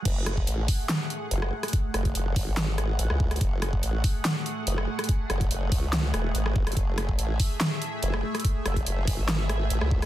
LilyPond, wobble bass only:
\new Staff \with { instrumentName = "Wobble bass" } { \clef bass \time 4/4 \key fis \minor \tempo 4 = 143 fis,,4 a,,8 r4. fis,,8 r8 | r8 fis,,8 fis,,8 gis,,4. a,,16 cis,8. | fis,,4 a,,8 r4. fis,,8 r8 | r8 fis,,8 fis,,8 cis,4 e,,8 gis,,8 fis,,16 fis,,16 |
fis,,4 a,,8 r4. fis,,8 r8 | r8 fis,,8 fis,,8 gis,,4. a,,16 cis,8. | }